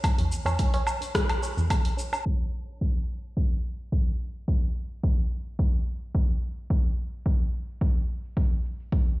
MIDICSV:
0, 0, Header, 1, 3, 480
1, 0, Start_track
1, 0, Tempo, 555556
1, 31, Time_signature, 4, 2, 24, 8
1, 7949, End_track
2, 0, Start_track
2, 0, Title_t, "Tabla"
2, 157, Note_on_c, 9, 64, 70
2, 163, Note_on_c, 9, 60, 31
2, 244, Note_off_c, 9, 64, 0
2, 249, Note_off_c, 9, 60, 0
2, 392, Note_on_c, 9, 64, 78
2, 395, Note_on_c, 9, 60, 61
2, 478, Note_off_c, 9, 64, 0
2, 481, Note_off_c, 9, 60, 0
2, 639, Note_on_c, 9, 60, 66
2, 726, Note_off_c, 9, 60, 0
2, 872, Note_on_c, 9, 63, 51
2, 958, Note_off_c, 9, 63, 0
2, 997, Note_on_c, 9, 60, 37
2, 1083, Note_off_c, 9, 60, 0
2, 1231, Note_on_c, 9, 60, 38
2, 1318, Note_off_c, 9, 60, 0
2, 1360, Note_on_c, 9, 64, 74
2, 1446, Note_off_c, 9, 64, 0
2, 1704, Note_on_c, 9, 63, 52
2, 1790, Note_off_c, 9, 63, 0
2, 1837, Note_on_c, 9, 63, 49
2, 1923, Note_off_c, 9, 63, 0
2, 7949, End_track
3, 0, Start_track
3, 0, Title_t, "Drums"
3, 33, Note_on_c, 9, 36, 95
3, 34, Note_on_c, 9, 46, 71
3, 34, Note_on_c, 9, 77, 83
3, 39, Note_on_c, 9, 82, 31
3, 119, Note_off_c, 9, 36, 0
3, 120, Note_off_c, 9, 46, 0
3, 120, Note_off_c, 9, 77, 0
3, 125, Note_off_c, 9, 82, 0
3, 160, Note_on_c, 9, 46, 43
3, 247, Note_off_c, 9, 46, 0
3, 275, Note_on_c, 9, 82, 80
3, 362, Note_off_c, 9, 82, 0
3, 399, Note_on_c, 9, 46, 31
3, 399, Note_on_c, 9, 77, 75
3, 404, Note_on_c, 9, 82, 43
3, 485, Note_off_c, 9, 46, 0
3, 485, Note_off_c, 9, 77, 0
3, 490, Note_off_c, 9, 82, 0
3, 510, Note_on_c, 9, 46, 71
3, 512, Note_on_c, 9, 36, 97
3, 515, Note_on_c, 9, 82, 33
3, 597, Note_off_c, 9, 46, 0
3, 599, Note_off_c, 9, 36, 0
3, 601, Note_off_c, 9, 82, 0
3, 637, Note_on_c, 9, 46, 44
3, 724, Note_off_c, 9, 46, 0
3, 749, Note_on_c, 9, 77, 79
3, 754, Note_on_c, 9, 82, 81
3, 835, Note_off_c, 9, 77, 0
3, 840, Note_off_c, 9, 82, 0
3, 880, Note_on_c, 9, 46, 33
3, 884, Note_on_c, 9, 82, 44
3, 966, Note_off_c, 9, 46, 0
3, 971, Note_off_c, 9, 82, 0
3, 991, Note_on_c, 9, 36, 101
3, 993, Note_on_c, 9, 37, 83
3, 993, Note_on_c, 9, 46, 73
3, 998, Note_on_c, 9, 82, 35
3, 1078, Note_off_c, 9, 36, 0
3, 1079, Note_off_c, 9, 37, 0
3, 1079, Note_off_c, 9, 46, 0
3, 1084, Note_off_c, 9, 82, 0
3, 1118, Note_on_c, 9, 46, 49
3, 1118, Note_on_c, 9, 77, 83
3, 1205, Note_off_c, 9, 46, 0
3, 1205, Note_off_c, 9, 77, 0
3, 1235, Note_on_c, 9, 82, 75
3, 1322, Note_off_c, 9, 82, 0
3, 1362, Note_on_c, 9, 82, 43
3, 1448, Note_off_c, 9, 82, 0
3, 1471, Note_on_c, 9, 36, 97
3, 1472, Note_on_c, 9, 46, 74
3, 1472, Note_on_c, 9, 77, 89
3, 1476, Note_on_c, 9, 82, 33
3, 1557, Note_off_c, 9, 36, 0
3, 1558, Note_off_c, 9, 46, 0
3, 1558, Note_off_c, 9, 77, 0
3, 1563, Note_off_c, 9, 82, 0
3, 1598, Note_on_c, 9, 46, 47
3, 1685, Note_off_c, 9, 46, 0
3, 1716, Note_on_c, 9, 82, 79
3, 1802, Note_off_c, 9, 82, 0
3, 1839, Note_on_c, 9, 77, 75
3, 1843, Note_on_c, 9, 82, 41
3, 1925, Note_off_c, 9, 77, 0
3, 1930, Note_off_c, 9, 82, 0
3, 1951, Note_on_c, 9, 36, 86
3, 2037, Note_off_c, 9, 36, 0
3, 2198, Note_on_c, 9, 82, 64
3, 2285, Note_off_c, 9, 82, 0
3, 2327, Note_on_c, 9, 82, 38
3, 2413, Note_off_c, 9, 82, 0
3, 2430, Note_on_c, 9, 36, 88
3, 2441, Note_on_c, 9, 82, 28
3, 2517, Note_off_c, 9, 36, 0
3, 2527, Note_off_c, 9, 82, 0
3, 2679, Note_on_c, 9, 82, 66
3, 2765, Note_off_c, 9, 82, 0
3, 2805, Note_on_c, 9, 82, 38
3, 2892, Note_off_c, 9, 82, 0
3, 2911, Note_on_c, 9, 36, 95
3, 2918, Note_on_c, 9, 82, 32
3, 2997, Note_off_c, 9, 36, 0
3, 3005, Note_off_c, 9, 82, 0
3, 3157, Note_on_c, 9, 82, 71
3, 3244, Note_off_c, 9, 82, 0
3, 3284, Note_on_c, 9, 82, 38
3, 3370, Note_off_c, 9, 82, 0
3, 3390, Note_on_c, 9, 36, 85
3, 3398, Note_on_c, 9, 82, 30
3, 3477, Note_off_c, 9, 36, 0
3, 3484, Note_off_c, 9, 82, 0
3, 3638, Note_on_c, 9, 82, 71
3, 3724, Note_off_c, 9, 82, 0
3, 3765, Note_on_c, 9, 82, 39
3, 3851, Note_off_c, 9, 82, 0
3, 3870, Note_on_c, 9, 36, 89
3, 3957, Note_off_c, 9, 36, 0
3, 4117, Note_on_c, 9, 82, 71
3, 4203, Note_off_c, 9, 82, 0
3, 4245, Note_on_c, 9, 82, 39
3, 4332, Note_off_c, 9, 82, 0
3, 4350, Note_on_c, 9, 36, 97
3, 4437, Note_off_c, 9, 36, 0
3, 4595, Note_on_c, 9, 82, 68
3, 4682, Note_off_c, 9, 82, 0
3, 4720, Note_on_c, 9, 82, 42
3, 4807, Note_off_c, 9, 82, 0
3, 4830, Note_on_c, 9, 36, 97
3, 4916, Note_off_c, 9, 36, 0
3, 5073, Note_on_c, 9, 82, 70
3, 5159, Note_off_c, 9, 82, 0
3, 5200, Note_on_c, 9, 82, 41
3, 5287, Note_off_c, 9, 82, 0
3, 5310, Note_on_c, 9, 36, 93
3, 5397, Note_off_c, 9, 36, 0
3, 5554, Note_on_c, 9, 82, 76
3, 5640, Note_off_c, 9, 82, 0
3, 5680, Note_on_c, 9, 82, 42
3, 5767, Note_off_c, 9, 82, 0
3, 5791, Note_on_c, 9, 36, 96
3, 5877, Note_off_c, 9, 36, 0
3, 6035, Note_on_c, 9, 82, 74
3, 6121, Note_off_c, 9, 82, 0
3, 6164, Note_on_c, 9, 82, 39
3, 6250, Note_off_c, 9, 82, 0
3, 6271, Note_on_c, 9, 36, 92
3, 6277, Note_on_c, 9, 82, 32
3, 6357, Note_off_c, 9, 36, 0
3, 6364, Note_off_c, 9, 82, 0
3, 6518, Note_on_c, 9, 82, 72
3, 6604, Note_off_c, 9, 82, 0
3, 6644, Note_on_c, 9, 82, 42
3, 6730, Note_off_c, 9, 82, 0
3, 6750, Note_on_c, 9, 36, 95
3, 6756, Note_on_c, 9, 82, 35
3, 6837, Note_off_c, 9, 36, 0
3, 6842, Note_off_c, 9, 82, 0
3, 6996, Note_on_c, 9, 82, 73
3, 7082, Note_off_c, 9, 82, 0
3, 7123, Note_on_c, 9, 82, 42
3, 7209, Note_off_c, 9, 82, 0
3, 7230, Note_on_c, 9, 36, 91
3, 7235, Note_on_c, 9, 82, 33
3, 7316, Note_off_c, 9, 36, 0
3, 7322, Note_off_c, 9, 82, 0
3, 7473, Note_on_c, 9, 82, 75
3, 7559, Note_off_c, 9, 82, 0
3, 7602, Note_on_c, 9, 82, 42
3, 7688, Note_off_c, 9, 82, 0
3, 7710, Note_on_c, 9, 36, 95
3, 7714, Note_on_c, 9, 82, 32
3, 7796, Note_off_c, 9, 36, 0
3, 7801, Note_off_c, 9, 82, 0
3, 7949, End_track
0, 0, End_of_file